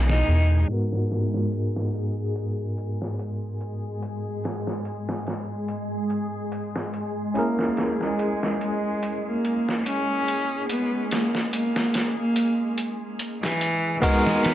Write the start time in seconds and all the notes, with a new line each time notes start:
Already playing: B1 G#3 D#4 E4 G#4 A#4
0.09 D#4, snare
0.29 E2
0.69 G#2 G#3 B3 D#4 F#4 G#4, closed hi-hat
0.73 A#4
0.93 snare
1.10 snare, closed hi-hat
1.34 snare
1.52 closed hi-hat
1.76 snare
1.94 closed hi-hat
2.35 closed hi-hat
2.78 closed hi-hat
3.02 snare
3.19 closed hi-hat
3.61 closed hi-hat
4.02 closed hi-hat
4.44 snare, closed hi-hat
4.67 snare
4.85 closed hi-hat
5.09 snare
5.27 snare, closed hi-hat
5.68 closed hi-hat
6.10 closed hi-hat
6.52 closed hi-hat
6.76 snare
6.94 closed hi-hat
7.34 A#3 C#4 E4 G#4, closed hi-hat
7.38 A#4
7.59 snare
7.77 snare, closed hi-hat
8.01 G#3, snare
8.19 closed hi-hat
8.43 snare
8.61 G#3, closed hi-hat
9.03 closed hi-hat
9.25 A#3
9.45 closed hi-hat
9.69 snare
9.86 C#4, closed hi-hat
10.28 closed hi-hat
10.69 B3, closed hi-hat
11.11 A#3, snare, closed hi-hat
11.35 snare
11.53 A#3, closed hi-hat
11.76 snare
11.94 snare, closed hi-hat
12.18 A#3
12.36 closed hi-hat
12.78 closed hi-hat
13.19 closed hi-hat
13.43 E3, snare
13.61 closed hi-hat
14.02 G#3 B3 D#4 F#4 A#4, kick, closed hi-hat, crash
14.27 snare
14.43 B3, snare, closed hi-hat